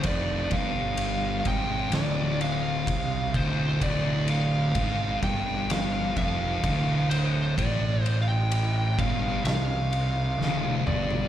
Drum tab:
RD |x-x-x-x-x-x-x-x-|x-x-x-x-x-x-x-x-|x-x-x-x-x-x-----|
SD |--------o-------|--------o-------|--------o---o---|
T1 |----------------|----------------|-------------o--|
T2 |----------------|----------------|--------------o-|
FT |----------------|----------------|---------------o|
BD |o-o---o-----o-o-|o---o-o---o-o---|o-----o---------|